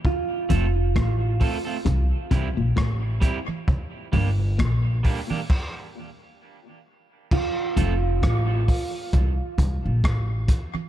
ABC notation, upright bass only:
X:1
M:4/4
L:1/16
Q:"Swing 16ths" 1/4=66
K:F
V:1 name="Upright bass" clef=bass
z2 F,,,2 A,,,2 z2 C,, z C,, B,,, A,,,2 z2 | z2 G,,,2 B,,,2 z8 z2 | z2 F,,,2 A,,,2 z2 C,, z C,, B,,, A,,,2 z2 |]